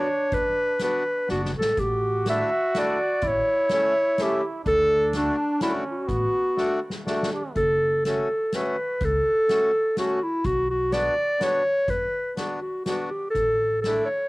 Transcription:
0.00 1.49 D4 loud
0.00 0.35 C#5 medium
0.32 0.48 F#2 medium
0.32 0.81 B4 loud
0.32 kick medium
0.32 closed hi-hat soft
0.79 1.03 B3 soft
0.79 1.03 D4 soft
0.79 1.04 F#4 medium
0.79 snare soft
0.79 closed hi-hat soft
0.83 1.27 B4 medium
1.28 1.52 F#1 medium
1.28 1.51 B3 medium
1.28 1.52 D4 medium
1.28 1.52 F#4 soft
1.28 1.42 F#4 medium
1.28 snare soft
1.45 snare soft
1.53 1.75 A1 medium
1.58 1.81 A4 medium
1.58 snare medium
1.77 2.41 A1 medium
1.77 3.25 F#4 loud
1.77 2.28 G4 medium
1.77 kick medium
1.77 closed hi-hat soft
2.26 2.50 A3 soft
2.26 2.50 D4 soft
2.26 2.50 E4 medium
2.26 2.80 E5 medium
2.26 snare medium
2.26 closed hi-hat soft
2.75 2.98 A3 medium
2.75 2.98 D4 soft
2.75 2.98 E4 medium
2.75 3.29 D5 medium
2.75 snare medium
2.75 closed hi-hat soft
3.22 3.39 A1 medium
3.22 4.64 E4 loud
3.22 kick medium
3.22 closed hi-hat soft
3.27 3.72 C#5 loud
3.69 3.93 A3 medium
3.69 3.94 C#4 soft
3.69 3.94 E4 medium
3.69 4.24 C#5 loud
3.69 snare medium
3.69 closed hi-hat soft
4.18 4.41 A3 medium
4.18 4.42 C#4 medium
4.18 4.42 E4 medium
4.18 snare medium
4.18 closed hi-hat soft
4.22 4.45 G4 medium
4.64 5.28 D2 medium
4.64 5.61 D4 medium
4.64 5.11 A4 loud
4.64 kick medium
4.64 closed hi-hat soft
5.13 5.36 A3 medium
5.13 5.36 D4 medium
5.13 5.36 F#4 medium
5.13 snare soft
5.13 closed hi-hat soft
5.17 5.60 D4 loud
5.60 5.83 A3 soft
5.60 6.09 C#4 medium
5.60 5.84 D4 medium
5.60 5.73 E4 medium
5.60 5.84 F#4 medium
5.60 snare medium
5.60 closed hi-hat soft
5.91 7.05 F#4 medium
6.08 6.25 A1 medium
6.08 6.79 B3 medium
6.08 kick medium
6.08 closed hi-hat soft
6.56 6.79 A3 medium
6.56 6.80 D4 medium
6.56 6.80 F#4 medium
6.56 snare soft
6.90 snare soft
7.05 7.30 A3 medium
7.05 7.30 D4 medium
7.05 7.30 F#4 medium
7.05 snare medium
7.23 snare medium
7.33 7.55 D4 medium
7.33 7.43 G4 medium
7.55 8.19 F#1 medium
7.55 8.02 A4 loud
7.55 kick medium
7.55 closed hi-hat soft
8.05 8.28 A3 medium
8.05 8.28 C#4 medium
8.05 8.29 F#4 medium
8.05 8.56 A4 medium
8.05 snare soft
8.05 closed hi-hat soft
8.52 8.76 A3 medium
8.52 8.76 C#4 medium
8.52 8.76 F#4 medium
8.52 9.06 B4 medium
8.52 snare medium
8.52 closed hi-hat soft
9.01 9.17 C#2 medium
9.01 9.98 A4 loud
9.01 kick medium
9.01 closed hi-hat soft
9.48 9.71 A3 medium
9.48 9.71 C#4 medium
9.48 9.72 F#4 medium
9.48 snare soft
9.48 closed hi-hat soft
9.97 10.19 A3 medium
9.97 10.20 C#4 soft
9.97 10.20 F#4 medium
9.97 10.25 F#4 medium
9.97 snare medium
9.97 closed hi-hat soft
10.23 10.47 E4 medium
10.44 11.07 B1 medium
10.44 10.69 F#4 medium
10.44 kick medium
10.44 closed hi-hat soft
10.70 10.95 F#4 medium
10.92 11.15 B3 medium
10.92 11.15 D4 medium
10.92 11.15 F#4 medium
10.92 11.44 D5 loud
10.92 snare medium
10.92 closed hi-hat soft
11.39 11.63 B3 medium
11.39 11.63 D4 soft
11.39 11.63 F#4 medium
11.39 11.92 C#5 loud
11.39 snare medium
11.39 closed hi-hat soft
11.88 12.05 F#2 medium
11.88 12.35 B4 medium
11.88 kick medium
11.88 closed hi-hat soft
12.37 12.59 B3 medium
12.37 12.60 D4 soft
12.37 12.60 F#4 medium
12.37 snare medium
12.37 closed hi-hat soft
12.61 12.84 F#4 medium
12.85 13.10 B3 soft
12.85 13.10 D4 soft
12.85 13.09 F#4 medium
12.85 13.10 F#4 medium
12.85 snare medium
12.85 closed hi-hat soft
13.10 13.30 G4 medium
13.30 13.78 A4 medium
13.35 13.98 A1 medium
13.35 kick medium
13.35 closed hi-hat soft
13.81 14.05 A4 medium
13.81 snare medium
13.81 closed hi-hat soft
13.86 14.08 A3 medium
13.86 14.08 D4 soft
13.86 14.08 E4 medium
14.05 14.29 C#5 medium

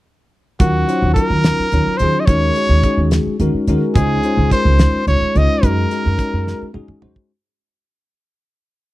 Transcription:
0.60 0.82 D#2 medium
0.60 0.85 F#3 medium
0.60 0.85 C#4 medium
0.60 0.86 D#4 medium
0.60 0.86 F4 medium
0.60 1.12 F#4 medium
0.60 0.86 A#4 medium
0.60 kick loud
0.60 closed hi-hat medium
0.87 1.13 F#3 medium
0.87 1.14 C#4 medium
0.87 1.14 D#4 medium
0.87 1.14 F4 medium
0.87 1.14 C5 medium
0.87 closed hi-hat medium
1.02 1.13 D#2 medium
1.14 1.67 F#3 medium
1.14 1.67 C#4 soft
1.14 1.67 D#4 medium
1.14 1.67 F4 soft
1.14 1.99 A#4 medium
1.14 1.68 A#4 medium
1.14 kick medium
1.14 closed hi-hat medium
1.30 1.51 D#2 medium
1.44 snare loud
1.44 closed hi-hat medium
1.59 muted upright bass stroke soft
1.72 1.83 D#2 medium
1.72 1.98 F#3 medium
1.72 1.98 C#4 soft
1.72 1.98 D#4 medium
1.72 1.98 F4 soft
1.72 1.98 C#5 medium
1.72 closed hi-hat medium
1.87 muted upright bass stroke soft
1.97 2.11 D#2 medium
1.97 2.28 F#3 medium
1.97 2.27 C#4 medium
1.97 2.27 D#4 soft
1.97 2.22 C5 medium
1.97 closed hi-hat medium
2.02 2.29 F4 soft
2.02 2.29 G#4 medium
2.20 2.27 D#5 medium
2.26 2.49 D#2 medium
2.26 2.53 G#3 medium
2.26 2.53 C#4 medium
2.26 2.54 D#4 medium
2.26 2.54 F#4 medium
2.26 2.54 A#4 medium
2.26 3.11 C#5 loud
2.26 kick medium
2.26 closed hi-hat medium
2.56 2.81 G#3 medium
2.56 2.81 C#4 medium
2.56 2.82 D#4 medium
2.56 2.82 F#4 soft
2.56 2.82 C#5 medium
2.56 closed hi-hat medium
2.69 2.80 D#2 medium
2.83 3.35 G#3 medium
2.83 3.35 C#4 soft
2.83 3.35 D#4 medium
2.83 3.35 F#4 medium
2.83 3.35 G#4 medium
2.83 kick medium
2.83 closed hi-hat soft
2.97 3.19 D#2 medium
3.11 snare medium
3.11 closed hi-hat medium
3.26 muted upright bass stroke soft
3.40 3.50 D#2 medium
3.40 3.65 G#3 medium
3.40 3.65 C#4 medium
3.40 3.65 D#4 medium
3.40 3.66 F#4 medium
3.40 3.66 A#4 medium
3.40 closed hi-hat medium
3.54 muted upright bass stroke soft
3.67 3.78 D#2 medium
3.67 3.94 G#3 medium
3.67 3.94 C#4 medium
3.67 3.94 D#4 medium
3.67 3.96 F#4 medium
3.67 3.97 A#4 medium
3.67 closed hi-hat soft
3.95 4.17 C#2 medium
3.95 4.21 G#3 medium
3.95 4.21 C#4 medium
3.95 4.21 D#4 medium
3.95 4.21 F4 medium
3.95 4.47 G#4 medium
3.95 4.22 C5 medium
3.95 kick loud
3.95 closed hi-hat medium
4.23 4.49 G#3 medium
4.23 4.49 C#4 medium
4.23 4.49 D#4 soft
4.23 4.50 F4 medium
4.23 4.50 C5 medium
4.23 closed hi-hat soft
4.37 4.48 C#2 medium
4.51 5.02 G#3 medium
4.51 5.02 C#4 soft
4.51 5.02 D#4 medium
4.51 5.03 F4 medium
4.51 5.03 A#4 medium
4.51 5.04 C5 medium
4.51 kick medium
4.51 closed hi-hat medium
4.65 4.86 C#2 medium
4.79 snare loud
4.79 closed hi-hat medium
4.93 muted upright bass stroke soft
5.07 5.18 C#2 medium
5.07 5.33 G#3 medium
5.07 5.33 C#4 soft
5.07 5.33 D#4 soft
5.07 5.33 F4 soft
5.07 5.39 C#5 medium
5.07 5.34 C#5 medium
5.07 closed hi-hat medium
5.21 muted upright bass stroke soft
5.35 5.46 C#2 medium
5.35 5.62 G#3 medium
5.35 5.62 C#4 medium
5.35 5.62 D#4 soft
5.35 5.64 F4 medium
5.35 5.64 C5 medium
5.35 5.66 D#5 medium
5.35 closed hi-hat soft
5.63 5.85 F#2 medium
5.63 5.89 G#3 medium
5.63 5.89 C#4 medium
5.63 5.89 D#4 medium
5.63 5.89 F#4 medium
5.63 5.89 A#4 medium
5.63 6.76 A#4 medium
5.63 kick medium
5.63 closed hi-hat medium
5.91 6.16 G#3 medium
5.91 6.17 C#4 medium
5.91 6.17 D#4 soft
5.91 6.17 F#4 medium
5.91 6.17 A#4 medium
5.91 closed hi-hat medium
6.06 6.16 F#2 medium
6.18 6.69 G#3 medium
6.18 6.69 C#4 medium
6.18 6.69 D#4 medium
6.18 6.70 F#4 soft
6.18 6.70 A#4 medium
6.18 kick medium
6.18 closed hi-hat medium
6.33 6.54 F#2 medium
6.47 snare soft
6.62 muted upright bass stroke soft
6.74 6.85 F#2 medium
6.74 7.00 G#3 medium
6.74 7.00 C#4 medium
6.74 7.00 D#4 medium
6.74 7.00 F#4 medium
6.74 7.00 G#4 medium
6.74 mid tom medium
6.88 muted upright bass stroke soft
6.88 mid tom medium
7.02 7.13 F#2 medium
7.02 7.30 G#3 medium
7.02 7.31 C#4 medium
7.02 7.31 D#4 medium
7.02 7.31 F#4 medium
7.02 7.31 C5 medium
7.02 floor tom medium
7.16 kick medium

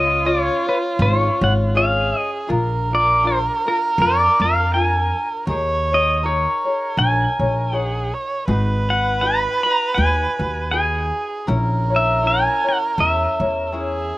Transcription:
0.00 0.47 C#2 medium
0.00 0.24 C#4 soft
0.00 0.24 F4 soft
0.00 1.76 F4 loud
0.00 0.24 C#5 medium
0.00 0.28 D#5 medium
0.24 0.67 C#4 medium
0.24 0.67 F4 medium
0.24 0.67 G#4 medium
0.24 0.65 C#5 medium
0.24 0.68 C#5 medium
0.67 1.00 C#4 soft
0.67 1.00 F4 medium
0.67 0.77 B4 medium
0.67 1.00 C#5 soft
0.99 1.27 G#1 loud
0.99 1.42 C#4 medium
0.99 1.43 F4 medium
0.99 1.42 G#4 medium
0.99 1.40 C#5 medium
0.99 1.44 C#5 medium
1.41 2.11 G#1 medium
1.41 1.74 C#4 soft
1.41 1.74 C#5 medium
1.41 1.52 F#5 loud
1.74 2.47 C#4 medium
1.74 2.48 F4 medium
1.74 2.47 G#4 medium
1.74 2.51 G#4 medium
1.74 2.48 C#5 medium
1.74 2.19 F5 medium
2.19 2.30 D#5 medium
2.47 3.47 A#1 medium
2.47 2.91 D4 medium
2.47 2.90 F4 loud
2.47 2.90 G#4 medium
2.47 2.89 A#4 loud
2.47 5.47 A#4 loud
2.90 3.23 D4 soft
2.90 3.22 F4 soft
2.90 3.23 A#4 medium
2.95 3.27 D5 medium
3.23 3.66 D4 medium
3.23 3.65 F4 medium
3.23 3.66 G#4 medium
3.23 3.64 A#4 medium
3.27 3.38 C5 medium
3.65 3.97 D4 soft
3.65 3.99 F4 soft
3.65 3.99 A#4 medium
3.65 3.77 A#4 medium
3.98 4.26 F2 loud
3.98 4.41 D4 medium
3.98 4.41 F4 medium
3.98 4.41 G#4 medium
3.98 4.40 A#4 medium
3.98 4.44 D5 medium
4.40 5.10 F2 medium
4.40 4.73 D4 soft
4.40 4.73 F4 soft
4.40 4.74 A#4 medium
4.40 4.74 F5 medium
4.73 5.49 D4 medium
4.73 5.49 F4 medium
4.73 5.48 G#4 medium
4.73 5.48 A#4 medium
4.73 5.28 G#5 medium
5.47 6.45 D#2 loud
5.47 5.91 D#4 medium
5.47 5.91 G#4 medium
5.47 5.91 A#4 medium
5.47 6.24 C#5 loud
5.47 5.90 C#5 loud
5.92 6.23 D#4 soft
5.92 6.23 G#4 soft
5.92 6.24 C#5 soft
5.92 6.26 D#5 medium
6.22 6.66 D#4 medium
6.22 6.65 G#4 medium
6.22 7.74 A#4 medium
6.22 6.65 A#4 medium
6.22 6.63 C#5 medium
6.22 7.02 C#5 medium
6.65 6.96 D#4 soft
6.65 6.97 G#4 soft
6.65 6.97 C#5 medium
6.97 7.25 A#1 medium
6.97 7.40 D#4 medium
6.97 7.39 G#4 medium
6.97 7.39 A#4 medium
6.97 7.38 C#5 medium
6.97 7.77 G#5 medium
7.39 8.10 A#1 medium
7.39 7.72 D#4 soft
7.39 7.72 G#4 soft
7.39 7.73 C#5 soft
7.72 8.48 D#4 medium
7.72 8.15 G#4 medium
7.72 8.48 G#4 medium
7.72 8.47 A#4 medium
7.72 8.48 C#5 medium
7.77 8.11 F#5 medium
8.14 8.47 C#5 medium
8.47 9.45 G#1 medium
8.47 8.90 D#4 medium
8.47 8.89 F#4 medium
8.47 8.90 G#4 medium
8.47 10.74 B4 loud
8.47 8.88 B4 medium
8.89 9.21 D#4 soft
8.89 9.21 F#4 soft
8.89 9.22 B4 medium
8.89 9.24 F#5 medium
9.21 9.65 D#4 medium
9.21 9.63 F#4 medium
9.21 9.64 G#4 medium
9.21 9.62 B4 medium
9.21 9.63 B5 medium
9.63 9.96 D#4 soft
9.63 9.96 F#4 soft
9.63 9.97 B4 soft
9.63 9.94 A#5 medium
9.94 10.25 D#2 medium
9.94 10.39 D#4 medium
9.94 10.39 F#4 medium
9.94 10.39 G#4 medium
9.94 10.38 B4 medium
9.94 10.70 G#5 medium
10.39 11.10 D#2 medium
10.39 10.72 D#4 soft
10.39 10.72 F#4 medium
10.39 10.72 B4 medium
10.71 11.47 D#4 medium
10.71 11.48 F#4 medium
10.71 11.47 G#4 medium
10.71 11.50 G#4 medium
10.71 11.48 B4 medium
10.71 11.27 G#5 medium
11.47 12.46 A#1 medium
11.47 11.90 C#4 medium
11.47 11.90 E4 loud
11.47 11.90 A#4 loud
11.47 13.66 A#4 loud
11.47 11.89 C#5 medium
11.90 12.21 C#4 soft
11.90 12.22 E4 soft
11.90 12.22 C#5 soft
11.96 12.27 E5 medium
12.22 12.65 C#4 medium
12.22 12.64 E4 medium
12.22 12.65 A#4 medium
12.22 12.63 C#5 medium
12.27 12.68 G#5 medium
12.64 12.98 C#4 soft
12.64 12.98 E4 soft
12.64 12.98 C#5 medium
12.69 12.77 F#5 medium
12.98 13.25 E2 medium
12.98 13.41 C#4 medium
12.98 13.40 E4 medium
12.98 13.40 A#4 medium
12.98 13.39 C#5 medium
12.98 14.13 E5 medium
13.40 14.10 E2 medium
13.40 13.71 C#4 soft
13.40 13.72 E4 soft
13.40 13.73 C#5 soft
13.66 13.74 A#4 medium
13.72 14.18 C#4 medium
13.72 14.18 E4 medium
13.72 14.18 G#4 medium
13.72 14.18 A#4 medium
13.72 14.18 C#5 medium

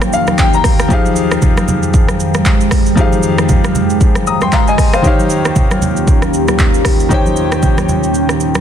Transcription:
0.00 0.86 D#2 medium
0.00 0.85 D#3 medium
0.00 5.00 D#3 medium
0.00 0.86 F3 medium
0.00 0.86 A#3 medium
0.00 0.86 D#4 medium
0.00 0.88 D#4 medium
0.00 0.86 G4 medium
0.00 0.87 C5 medium
0.00 0.87 C#5 medium
0.00 0.12 F5 medium
0.00 5.00 G5 medium
0.00 cross-stick loud
0.00 high conga medium
0.00 shaker medium
0.13 0.37 F5 medium
0.13 shaker medium
0.27 cross-stick medium
0.27 high conga medium
0.27 shaker soft
0.38 0.53 G5 medium
0.38 kick medium
0.38 clap medium
0.38 shaker medium
0.53 0.88 A#5 medium
0.53 shaker medium
0.64 kick loud
0.64 cross-stick loud
0.64 open hi-hat medium
0.64 shaker medium
0.79 cross-stick loud
0.79 shaker medium
0.89 5.00 F2 medium
0.89 2.92 F3 medium
0.89 5.00 G#3 medium
0.89 2.93 D#4 medium
0.89 2.94 G4 medium
0.89 2.94 G#4 medium
0.89 kick loud
0.89 shaker medium
0.94 2.95 F5 medium
1.06 high conga medium
1.06 shaker medium
1.16 shaker loud
1.31 cross-stick medium
1.31 shaker soft
1.42 kick medium
1.42 low conga medium
1.42 shaker medium
1.57 cross-stick medium
1.57 high conga medium
1.57 shaker medium
1.68 high conga medium
1.68 low conga medium
1.68 shaker medium
1.83 shaker soft
1.94 kick loud
1.94 shaker medium
2.08 cross-stick medium
2.08 high conga medium
2.08 shaker medium
2.20 shaker medium
2.34 cross-stick medium
2.34 high conga medium
2.34 shaker soft
2.45 kick loud
2.45 clap loud
2.45 shaker medium
2.61 shaker medium
2.71 kick medium
2.71 cross-stick loud
2.71 open hi-hat medium
2.71 shaker medium
2.86 shaker medium
2.95 4.74 F3 medium
2.95 4.74 D#4 medium
2.95 4.75 G4 medium
2.95 4.76 G#4 medium
2.95 kick loud
2.95 shaker medium
3.01 4.26 F5 medium
3.12 high conga medium
3.12 shaker medium
3.23 shaker loud
3.38 cross-stick loud
3.38 shaker soft
3.49 kick medium
3.49 low conga medium
3.49 shaker medium
3.64 cross-stick medium
3.64 high conga medium
3.64 shaker medium
3.75 high conga medium
3.75 low conga medium
3.75 shaker medium
3.90 shaker soft
4.01 kick loud
4.01 shaker medium
4.15 cross-stick medium
4.15 high conga medium
4.15 shaker medium
4.27 4.41 A#5 medium
4.27 4.41 D#6 medium
4.27 shaker medium
4.41 4.52 G5 medium
4.41 4.52 C6 medium
4.41 cross-stick medium
4.41 high conga medium
4.41 shaker soft
4.52 4.67 F5 medium
4.52 4.67 A#5 medium
4.52 kick loud
4.52 clap loud
4.52 shaker medium
4.67 4.93 D#5 medium
4.67 4.92 G#5 medium
4.67 shaker medium
4.78 kick medium
4.78 cross-stick loud
4.78 open hi-hat medium
4.78 shaker medium
4.93 5.04 C5 medium
4.93 5.06 F5 medium
4.93 cross-stick loud
4.93 shaker medium
5.02 8.61 D#2 medium
5.02 7.06 D#3 medium
5.02 8.61 D#3 medium
5.02 8.61 A#3 medium
5.02 8.61 C#4 medium
5.02 7.07 D#4 medium
5.02 8.61 F4 medium
5.02 7.07 G4 medium
5.02 8.61 G4 medium
5.02 7.08 C5 medium
5.02 7.08 C#5 medium
5.02 kick loud
5.02 shaker medium
5.07 7.09 F5 medium
5.19 high conga medium
5.19 shaker medium
5.30 shaker medium
5.45 cross-stick medium
5.45 shaker soft
5.56 kick medium
5.56 low conga medium
5.56 shaker medium
5.71 cross-stick medium
5.71 high conga medium
5.71 shaker medium
5.82 high conga medium
5.82 low conga medium
5.82 shaker medium
5.97 shaker medium
6.07 kick loud
6.07 shaker medium
6.22 cross-stick medium
6.22 high conga medium
6.22 shaker soft
6.34 shaker medium
6.48 cross-stick medium
6.48 high conga medium
6.48 shaker soft
6.59 kick loud
6.59 clap medium
6.59 shaker medium
6.74 shaker medium
6.85 kick medium
6.85 cross-stick loud
6.85 open hi-hat medium
6.85 shaker medium
7.00 shaker medium
7.09 8.61 D#3 medium
7.09 8.61 D#4 medium
7.09 8.61 G4 medium
7.09 8.61 C5 medium
7.09 kick loud
7.09 shaker medium
7.13 8.61 C#5 medium
7.13 8.61 G5 medium
7.26 high conga medium
7.26 shaker medium
7.36 shaker loud
7.52 cross-stick loud
7.52 shaker soft
7.62 kick medium
7.62 low conga medium
7.62 shaker medium
7.78 cross-stick medium
7.78 high conga medium
7.78 shaker soft
7.89 high conga medium
7.89 low conga medium
7.89 shaker medium
8.03 shaker medium
8.14 shaker medium
8.29 cross-stick medium
8.29 shaker soft
8.40 shaker medium
8.55 cross-stick medium
8.55 high conga medium
8.55 shaker medium

